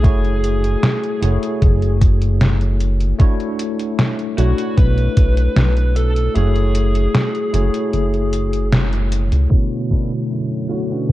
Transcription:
Already playing: G#4
0.03 F#1 A3 E4 F#4 G#4 C#5, kick, closed hi-hat
0.25 closed hi-hat
0.44 closed hi-hat
0.64 closed hi-hat
0.83 snare, closed hi-hat
1.04 closed hi-hat
1.21 F#1 A3 E4 F#4 G#4 C#5, closed hi-hat
1.43 closed hi-hat
1.62 F#1, kick, closed hi-hat
1.82 closed hi-hat
2.01 kick, closed hi-hat
2.22 closed hi-hat
2.41 snare, closed hi-hat
2.61 closed hi-hat
2.80 closed hi-hat
3.01 closed hi-hat
3.18 A3 D4 E4 F#4 C#5, kick, closed hi-hat
3.40 closed hi-hat
3.59 closed hi-hat
3.79 closed hi-hat
3.99 snare, closed hi-hat
4.19 closed hi-hat
4.37 B1 A3 D4 E4 F#4 C#5, closed hi-hat
4.58 closed hi-hat
4.78 B1 B4, kick, closed hi-hat
4.98 closed hi-hat
5.17 B1, kick, closed hi-hat
5.37 closed hi-hat
5.56 B1, snare, closed hi-hat
5.77 closed hi-hat
5.96 A4, closed hi-hat
6.16 closed hi-hat
6.34 F#1 A3 E4 F#4 G#4 C#5, closed hi-hat
6.56 closed hi-hat
6.75 closed hi-hat
6.95 closed hi-hat
7.15 snare, closed hi-hat
7.35 closed hi-hat
7.53 F#1 A3 E4 F#4 G#4 C#5, closed hi-hat
7.74 closed hi-hat
7.93 F#1, closed hi-hat
8.14 closed hi-hat
8.33 closed hi-hat
8.53 closed hi-hat
8.72 snare, closed hi-hat
8.93 closed hi-hat
9.12 closed hi-hat
9.32 C#2, closed hi-hat
9.50 B2 D3 F#3 A3 E4 F#4 C#5, kick, closed hi-hat
9.72 closed hi-hat
9.91 B3 C#4 D4 E4 A4, kick, closed hi-hat
10.11 closed hi-hat
10.30 F#2, closed hi-hat
10.50 closed hi-hat
10.68 B2 D3 A3 E4 F#4 C#5, muted clean electric guitar stroke, closed hi-hat
10.90 B3 C#4 D4 E4 B4, closed hi-hat
11.09 B4

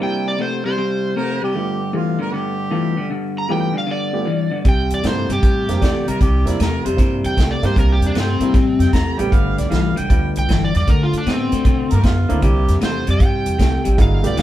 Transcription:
0.00 C3 G3 A#3 C4 D4 E4 G5
0.28 D5
0.39 C3 A3 C5
0.65 C3 G3 C5
0.77 C3 G3
1.16 C3 A3 A#4
1.42 C3 G3 G4
1.54 G2 D3 A3 B3 F4 G4
1.93 G2 E3 A3 B3 F4 G4
2.19 G2 D3 A#4
2.33 G2 D3 G4
2.71 G2 E3 A3 B3 F4 A4
2.97 G2 D3
3.10 G2 D3
3.38 A#5
3.49 G2 E3 A3 B3 F4 G4 G5
3.73 G2 D3
3.78 F5
3.86 G2 D3
3.91 D5
4.13 A3 B3 F4 G4
4.25 G2 E3
4.51 G2 D3
4.65 C2 C3 G3 G5, kick, closed hi-hat
4.90 E2 D5, closed hi-hat
5.03 G2 C3 A3 A#3 C4 D4 E4 C5, snare, closed hi-hat
5.29 G2 C3 G3 G4, closed hi-hat
5.42 A2 C3 G3, kick, closed hi-hat
5.69 F2 A#3 C4 D4 G4, snare, closed hi-hat
5.82 E2 C3 A3 D5, kick, snare, closed hi-hat
6.07 C2 C3 G3 A#4, closed hi-hat
6.21 C2 C3 G3 G4, kick, closed hi-hat
6.45 E2 A#3 C4 D4 E4 D5, snare, closed hi-hat
6.59 E2 C3 A3 A#4, snare, closed hi-hat
6.85 F2 C3 G3 C5, closed hi-hat
6.96 G2 C3 G3 A#3 C4 D4 E4, kick, snare, closed hi-hat
7.24 E2 G5, closed hi-hat
7.37 C2 C3 A3, kick, snare, closed hi-hat
7.51 D5
7.62 G2 C3 G3 A#3 C4 D4 G4 C5, snare, closed hi-hat
7.76 C2 C3 G3 A#4, kick, closed hi-hat
7.92 G4
8.01 E2, closed hi-hat
8.07 D4
8.14 G2 C3 A3, snare, closed hi-hat
8.20 C4
8.40 G2 C3 G3 A#3 C4 D4 E4, closed hi-hat
8.54 A2 C3 G3, kick, snare, closed hi-hat
8.79 F2 G5, snare, closed hi-hat
8.93 E2 C3 A3 A#5, kick, snare, closed hi-hat
9.18 A1 C3 G3 A3 B3 G4 G5, closed hi-hat
9.31 G1 G2 D3 F5, kick, closed hi-hat
9.58 B1 D5, snare, closed hi-hat
9.70 B1 G2 E3 G3 A3 B3 F4 F5, snare, closed hi-hat
9.96 C2 G2 D3 G5, closed hi-hat
10.09 D2 G2 D3 G3 A3 B3 F4, kick, closed hi-hat
10.36 B1 G5, closed hi-hat
10.49 G1 G2 E3, kick, snare, closed hi-hat
10.64 D5
10.75 E2 G2 D3 D5, snare, closed hi-hat
10.87 D2 D3 A3 A#4, kick, closed hi-hat
11.03 F4
11.13 F#2, closed hi-hat
11.18 D4
11.26 A2 D3 B3, snare, closed hi-hat
11.31 C4
11.52 A2 D3 A3, closed hi-hat
11.65 B2 D3 A3, kick, closed hi-hat
11.91 G2 A#4, closed hi-hat
12.03 F#2 D3 B3 F4, kick, snare, closed hi-hat
12.29 D2 D3 A3 A#3 C4 D4 E4, closed hi-hat
12.41 C2 C3 G3 A#3 C4 D4 E4 G4, kick, closed hi-hat
12.68 E2, snare, closed hi-hat
12.81 E2 C3 A3, snare, closed hi-hat
12.85 C5
13.07 F2 C3 G3 D5, closed hi-hat
13.20 G2 C3 G3 G5, kick, closed hi-hat
13.46 E2, closed hi-hat
13.59 C2 C3 A3, kick, snare, closed hi-hat
13.84 A1 C3 G3, closed hi-hat
13.98 G1 G2 D3 G#3 A#3 E4 F#4, kick, closed hi-hat
14.02 F5
14.23 B1 A3 B3 F4 G4 D5, closed hi-hat
14.37 D2 G2 E3 F5, snare, closed hi-hat

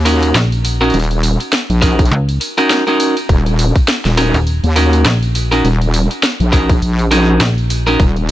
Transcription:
Already playing: D#2
0.05 C#4 D#4 F#4 A#4, open hi-hat
0.23 open hi-hat
0.35 A#1, snare, open hi-hat
0.52 open hi-hat
0.65 open hi-hat
0.81 C#4 D#4 F#4 A#4, open hi-hat
0.84 open hi-hat
0.90 open hi-hat
0.94 D#1, open hi-hat
1.00 open hi-hat
1.04 open hi-hat
1.11 open hi-hat
1.23 open hi-hat
1.40 open hi-hat
1.53 snare, open hi-hat
1.70 A#1, open hi-hat
1.82 C#4 D#4 F#4 A#4, kick, open hi-hat
1.99 kick, open hi-hat
2.05 open hi-hat
2.11 C#2
2.29 open hi-hat
2.41 open hi-hat
2.58 C#4 D#4 F#4 A#4, open hi-hat
2.70 snare, open hi-hat
2.87 C#4 D#4 F#4 A#4, open hi-hat
3.00 open hi-hat
3.17 open hi-hat
3.29 D#1, kick, open hi-hat
3.46 open hi-hat
3.59 open hi-hat
3.76 kick, open hi-hat
3.88 snare, open hi-hat
4.05 D#1, snare, open hi-hat
4.17 C#4 D#4 F#4 A#4, snare, open hi-hat
4.34 D#1, open hi-hat
4.47 open hi-hat
4.64 D#2, open hi-hat
4.76 C#4 D#4 F#4 A#4, open hi-hat
4.93 open hi-hat
5.06 A#1, snare, open hi-hat
5.23 open hi-hat
5.35 open hi-hat
5.52 C#4 D#4 F#4 A#4, open hi-hat
5.64 D#1, open hi-hat
5.82 open hi-hat
5.94 open hi-hat
6.11 open hi-hat
6.23 snare, open hi-hat
6.40 A#1, open hi-hat
6.52 C#4 D#4 F#4 A#4, kick, open hi-hat
6.70 kick, open hi-hat
6.82 A#1, open hi-hat
6.99 open hi-hat
7.11 C#4 D#4 F#4 A#4, open hi-hat
7.41 A#1, snare, open hi-hat
7.58 open hi-hat
7.70 open hi-hat
7.87 C#4 D#4 F#4 A#4, open hi-hat
8.00 D#1, kick, open hi-hat
8.16 open hi-hat

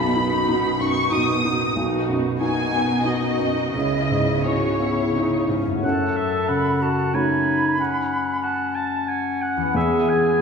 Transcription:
Already playing: B1 B2 D#4 F#4 B5
0.16 D#4 F#4
0.48 B2 D#4 F#4
0.80 F#2 D#4 F#4 C#6
1.12 B2 D#4 F#4 D#6
1.45 D#4 F#4
1.76 B1 B2 D#4 F#4
2.09 F#2
2.41 D#4 F#4 G#5
2.72 B3
3.05 D#4 F#4 D#5
3.39 F#2
3.75 C#2 C#3 B3 E4 D#5
4.10 G#2
4.45 C#4 E4 F#4 C#5
4.80 B3 E4
5.15 C#4 D#4 E4
5.48 G#2 C#4
5.65 F#2
5.70 A3
5.74 F#4
5.79 F#2 C#5
5.84 A4 F#5 A5
6.16 E5
6.48 C#3 F#5 B5
6.82 F#4 A5
7.14 A3 C#4 D#4 F#4 G#5 B5
7.77 C#4 F#5
8.43 F#5 A5
8.75 A5
9.08 F#5 G#5
9.42 F#5
9.57 E2
9.62 B3
9.66 G#4
9.70 B4
9.74 E2 G#4 E5 G#5
10.09 G#5
10.38 B2

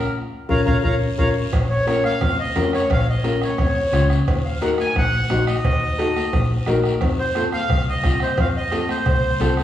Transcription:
Already playing: A#4
0.00 short guiro
0.49 A#1 C#4 F4 A#4 C#5 F5 A#5, bombo low, low conga, long guiro
0.66 A#1 C#4 F4 A#4 C#5 F5 A#5, bombo low, low conga, long guiro
0.83 A#1 C#4 F4 A#4 C#5 F5 A#5, bombo low, low conga, long guiro
1.17 A#1 C#4 F4 A#4 C#5 F5 A#5, bombo low, low conga, long guiro
1.52 A#1, bombo low, bombo rim, cowbell, low conga, long guiro
1.70 C#5
1.86 C#4 F4 A#4 C#5, bombo rim, cowbell, high conga, short guiro
2.04 F5, bombo rim, high conga, short guiro
2.21 F2, bombo low, bombo rim, cowbell, low conga, long guiro
2.40 D#5
2.56 F2 C#4 F4 A#4, bombo rim, cowbell, high conga, low conga, low timbale, short guiro
2.73 C#5, bombo rim, short guiro
2.90 A#1 F5, bombo low, bombo rim, cowbell, low conga, long guiro
3.09 D#5
3.23 C#4 F4 A#4, bombo rim, cowbell, high conga, short guiro
3.42 C#5, bombo rim, high conga, short guiro
3.58 F2, bombo low, bombo rim, cowbell, low conga, long guiro
3.92 C#2 C#4 F4 C5, bombo rim, cowbell, high conga, low conga, short guiro
4.10 bombo rim, short guiro
4.27 D#2, bombo low, bombo rim, cowbell, low conga, long guiro
4.45 F5
4.61 D#4 F#4 A#4 F#5, bombo rim, cowbell, high conga, short guiro
4.78 G#5, bombo rim, high conga, short guiro
4.95 A#1 F#5, bombo low, bombo rim, cowbell, low conga, long guiro
5.29 A#1 D#4 F#4 C5, bombo rim, cowbell, high conga, low conga, low timbale, short guiro
5.47 D#5, bombo rim, short guiro
5.64 D#2, bombo low, bombo rim, cowbell, low conga, long guiro
5.98 D#4 F#4 A4, bombo rim, cowbell, high conga, short guiro
6.16 bombo rim, high conga, short guiro
6.33 A#1, bombo low, bombo rim, cowbell, low conga, long guiro
6.66 A#1 D#4 F#4 A#4, bombo rim, cowbell, high conga, low timbale, short guiro
6.84 bombo rim, short guiro
7.01 F2, bombo low, bombo rim, cowbell, low conga, long guiro
7.19 C5
7.35 C4 F4 A4 C5, bombo rim, cowbell, high conga, short guiro
7.52 F5, bombo rim, high conga, short guiro
7.69 C2, bombo low, bombo rim, cowbell, low conga, long guiro
7.89 D#5
8.03 C2 C4 F4 C5, bombo low, bombo rim, cowbell, high conga, short guiro
8.20 C5, bombo rim, short guiro
8.38 F2 F5, bombo low, bombo rim, cowbell, long guiro
8.57 D#5
8.72 C4 F4 A4, bombo rim, cowbell, high conga, short guiro
8.89 C5, bombo rim, high conga, short guiro
9.06 C2, bombo low, bombo rim, cowbell, low conga, long guiro
9.40 C2 C4 F4 A4, bombo rim, cowbell, high conga, low conga, short guiro
9.57 bombo rim, short guiro

